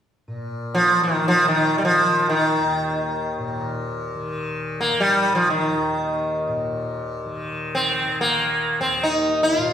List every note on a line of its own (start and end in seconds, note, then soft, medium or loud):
0.28 3.38 A#2 soft
0.74 1.03 F3 medium
1.03 1.27 D#3 medium
1.03 1.83 D#3 soft
1.28 1.48 F3 medium
1.48 1.78 D#3 medium
1.78 1.84 G3 soft
1.83 4.15 D#3 soft
1.83 2.29 F3 medium
2.29 3.70 D#3 medium
2.60 5.69 D#2 soft
3.38 6.47 A#2 medium
4.15 4.92 D#3 soft
4.81 5.01 A#3 medium
4.92 7.25 D#3 medium
5.00 5.35 G3 medium
5.35 5.50 F3 medium
5.50 6.51 D#3 medium
5.69 8.80 D#2 soft
6.48 9.57 A#2 medium
7.25 8.04 D#3 soft
7.75 8.21 C4 medium
8.04 9.73 D#3 soft
8.21 8.80 A#3 medium
8.80 9.73 D#2 soft
8.80 9.03 C4 medium
9.03 9.43 D#4 medium
9.43 9.60 E4 medium
9.58 9.73 A#2 medium
9.58 9.73 F4 medium